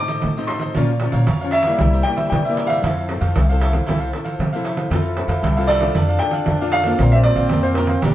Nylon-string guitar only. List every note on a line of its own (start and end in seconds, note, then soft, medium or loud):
0.00 0.21 A2 medium
0.00 0.32 F3 medium
0.00 0.32 C4 medium
0.00 0.33 D#4 medium
0.23 0.73 A2 soft
0.38 0.72 F3 medium
0.38 0.72 C4 medium
0.38 0.72 D#4 medium
0.76 1.25 A#2 soft
0.76 0.91 F3 medium
0.76 0.91 C#4 medium
0.76 0.92 F4 medium
1.02 1.26 F3 medium
1.02 1.26 C#4 medium
1.02 1.27 F4 medium
1.29 1.43 F3 medium
1.44 1.64 F3 medium
1.44 1.64 C#4 medium
1.44 1.64 F4 medium
1.67 2.01 G3 medium
1.67 2.02 A#3 medium
1.67 2.02 E4 medium
1.82 2.30 C3 medium
2.07 2.41 G3 medium
2.07 2.41 A#3 medium
2.07 2.41 E4 medium
2.35 2.83 G2 soft
2.48 2.81 G3 medium
2.48 2.82 A#3 medium
2.48 2.82 E4 medium
2.86 3.34 F3 medium
2.86 3.07 C4 soft
2.86 3.07 E4 soft
2.86 3.07 A4 medium
3.10 3.34 C4 medium
3.10 3.35 E4 soft
3.10 3.35 A4 medium
3.37 3.86 C3 medium
3.51 3.72 C4 medium
3.51 3.72 E4 soft
3.51 3.72 A4 medium
3.74 3.83 C4 medium
3.74 3.83 E4 medium
3.74 3.84 A4 medium
3.89 4.38 F3 soft
3.89 4.10 C4 soft
3.89 4.10 E4 soft
3.89 4.11 A4 medium
4.15 4.39 C4 medium
4.15 4.39 E4 medium
4.15 4.39 A4 medium
4.41 4.90 C3 medium
4.55 4.89 C4 medium
4.55 4.89 E4 medium
4.55 4.89 A4 medium
4.93 5.42 F3 medium
4.93 5.15 C4 soft
4.93 5.15 F4 medium
4.93 5.15 A4 medium
5.18 5.53 C4 soft
5.18 5.53 A4 medium
5.45 5.93 C3 medium
5.58 5.79 C4 medium
5.58 5.79 F4 medium
5.58 5.80 A4 medium
5.82 6.17 D4 medium
5.82 6.17 F4 medium
5.82 6.17 A4 medium
5.97 6.46 F3 medium
6.21 6.56 D4 medium
6.21 6.57 F4 medium
6.21 6.57 A4 medium
6.49 6.97 F3 soft
6.61 6.83 D4 medium
6.61 6.83 F4 medium
6.61 6.83 A4 medium
6.86 7.13 A#3 medium
6.86 7.14 C4 medium
6.86 7.14 F4 medium
7.01 7.50 A#2 medium
7.14 7.48 A#3 medium
7.14 7.48 C4 medium
7.14 7.49 F4 medium
7.53 8.01 F3 medium
7.53 7.74 A#3 medium
7.53 7.74 C4 medium
7.53 7.74 F4 medium
7.77 7.92 A#3 medium
7.77 7.92 C4 medium
7.77 7.92 F4 medium
8.03 8.15 A#2 medium
8.03 8.15 G3 medium
8.03 8.15 D4 medium
8.03 8.15 F4 medium